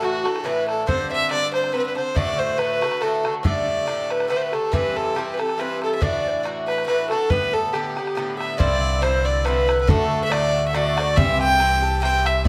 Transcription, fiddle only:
0.04 0.27 F#4 medium
0.25 0.47 A4 medium
0.45 0.67 B4 medium
0.68 0.87 A4 medium
0.89 1.10 C5 medium
1.12 1.30 E5 loud
1.31 1.52 D5 loud
1.53 1.74 C5 medium
1.73 1.78 B4 medium
1.78 1.85 B4 medium
1.86 1.96 B4 medium
1.97 2.18 C5 medium
2.16 2.40 D5 loud
2.39 2.60 C5 medium
2.58 3.04 B4 loud
3.02 3.35 A4 medium
3.45 4.12 D5 medium
4.11 4.29 B4 medium
4.30 4.38 B4 medium
4.36 4.44 C5 medium
4.42 4.55 B4 medium
4.54 4.75 A4 medium
4.73 4.98 B4 loud
4.96 5.17 A4 medium
5.16 5.35 G4 medium
5.33 5.41 B4 medium
5.39 5.61 A4 medium
5.60 5.82 B4 medium
5.83 5.95 A4 medium
5.95 6.04 E5 medium
6.02 6.45 D5 medium
6.67 6.86 B4 medium
6.87 7.09 B4 loud
7.10 7.32 A4 medium
7.30 7.55 B4 loud
7.53 7.75 A4 medium
7.73 8.38 G4 medium
8.39 8.58 E5 medium
8.59 9.04 D5 loud
9.02 9.27 C5 medium
9.25 9.47 D5 medium
9.45 9.81 B4 loud
9.81 9.90 B4 medium
9.89 10.24 A4 loud
10.24 10.33 E5 medium
10.32 10.67 D5 loud
10.68 10.76 E5 medium
10.75 11.19 D5 medium
11.17 11.40 E5 loud
11.40 11.99 G5 loud
12.04 12.28 G5 loud
12.26 12.45 E5 medium

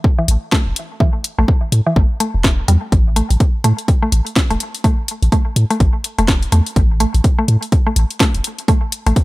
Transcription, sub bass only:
0.28 0.37 A1 medium
0.67 0.72 E1 medium
1.38 1.44 A1 loud
1.72 1.81 A2 loud
1.96 2.05 A1 medium
2.34 2.62 E1 medium
2.68 2.77 E2 medium
2.92 3.22 A1 loud
3.30 3.36 A1 medium
3.64 3.73 A2 loud
4.12 4.21 A1 medium
4.50 4.56 E1 medium
5.22 5.28 A1 medium
5.56 5.65 A2 medium
5.80 5.89 A1 medium
6.18 6.46 E1 medium
6.52 6.61 E2 loud
6.76 7.06 A1 medium
7.14 7.20 A1 loud
7.48 7.57 A2 medium
7.96 8.05 A1 medium
8.35 8.40 E1 medium
9.06 9.12 A1 loud

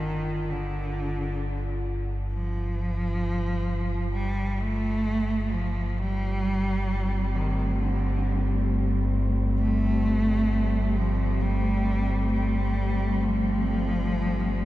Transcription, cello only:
0.00 0.52 D#3 medium
0.50 1.87 D3 medium
2.32 4.10 F3 medium
4.13 4.63 G3 medium
4.61 5.53 A3 medium
5.52 5.99 F3 medium
5.98 7.36 G3 medium
7.35 7.79 D#3 medium
7.80 8.66 D3 medium
9.59 10.98 A3 loud
10.96 11.43 F3 medium
11.41 12.32 G3 medium
12.33 13.24 G3 medium
13.23 14.65 F3 medium

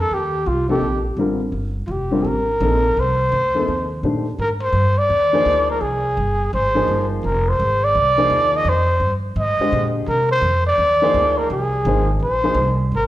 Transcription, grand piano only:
0.68 0.81 C3 medium
0.68 0.81 F3 medium
0.68 0.82 A#3 medium
0.68 0.82 D#4 medium
0.68 0.82 A4 medium
1.18 1.38 D3 medium
1.18 1.39 G3 medium
1.18 1.39 C4 medium
1.18 1.39 F4 medium
1.18 1.39 A#4 medium
2.11 2.23 D3 medium
2.11 2.24 G3 medium
2.11 2.24 C4 medium
2.11 2.24 F4 medium
2.11 2.24 A#4 medium
2.61 2.81 C3 medium
2.61 2.81 F3 medium
2.61 2.82 A#3 soft
2.61 2.82 D#4 soft
2.61 2.82 A4 medium
3.54 3.66 C3 medium
3.54 3.67 F3 medium
3.54 3.67 A#3 medium
3.54 3.67 D#4 medium
3.54 3.67 A4 medium
4.03 4.24 D#3 medium
4.03 4.24 A3 soft
4.03 4.24 D4 medium
4.03 4.24 G4 soft
4.03 4.24 C5 medium
5.33 5.79 F3 medium
5.33 5.79 A#3 medium
5.33 5.80 D#4 medium
5.33 5.80 G#4 medium
5.33 5.80 C5 medium
6.75 7.21 F3 medium
6.75 7.21 A#3 medium
6.75 7.21 D#4 medium
6.75 7.22 G#4 medium
6.75 7.22 C5 medium
8.18 8.64 F3 medium
8.18 8.64 A#3 medium
8.18 8.64 D#4 medium
8.18 8.64 G#4 medium
8.18 8.64 C5 medium
9.60 10.06 D3 medium
9.60 10.06 G#3 medium
9.60 10.06 G4 medium
9.60 10.06 C5 medium
9.60 10.07 D#5 medium
11.02 11.48 F3 medium
11.02 11.48 A#3 medium
11.02 11.48 D#4 medium
11.02 11.49 G#4 medium
11.02 11.49 C5 medium
11.86 12.06 F3 medium
11.86 12.06 A#3 medium
11.86 12.06 D#4 medium
11.86 12.07 G#4 medium
11.86 12.07 C5 medium
12.44 12.56 F3 medium
12.44 12.56 A#3 medium
12.44 12.56 D#4 medium
12.44 12.56 G#4 medium
12.44 12.56 C5 medium

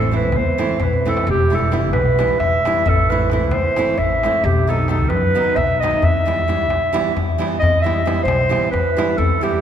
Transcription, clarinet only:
0.00 0.13 A4 medium
0.16 0.38 B4 medium
0.37 0.75 C5 medium
0.75 0.85 C5 medium
0.83 1.07 B4 medium
1.08 1.27 A4 medium
1.31 1.56 G4 loud
1.54 1.73 A4 medium
1.93 2.36 B4 medium
2.40 2.90 E5 medium
2.89 3.11 A4 medium
3.10 3.31 B4 medium
3.33 3.54 B4 medium
3.53 4.00 C5 loud
3.98 4.46 E5 medium
4.45 4.71 G4 medium
4.69 4.90 A4 medium
4.91 5.10 A4 medium
5.09 5.58 B4 loud
5.56 5.79 E5 loud
5.80 6.06 D#5 medium
6.04 7.40 E5 medium
7.59 7.81 D#5 medium
7.82 8.21 E5 medium
8.23 8.67 C5 medium
8.71 9.19 B4 medium
9.17 9.45 A4 medium
9.43 9.61 G4 medium

